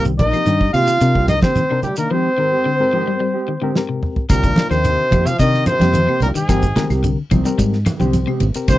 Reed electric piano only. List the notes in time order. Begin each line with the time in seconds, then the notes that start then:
0.20 D4 D#4 A#4
0.47 D4 D#4 G4
1.01 D4 D#4 A#4
1.71 D4 D#4 A#4
1.98 D4 D#4 A#4
2.39 G#2 C4 G4 A#4
2.80 G#2 C4 G4 A#4
3.62 G#2 C4 G4 A#4
3.76 G#2 C4 G4 A#4
4.44 D4 D#4 A#4
4.57 D4 D#4 A#4
5.41 D4 D#4 A#4
6.22 D4 D#4 G4
6.49 C4 G4 A#4
6.76 C4 G4 A#4
7.45 C4 G4 A#4
8.00 C4 G4 C5
8.55 C4 G4 A#4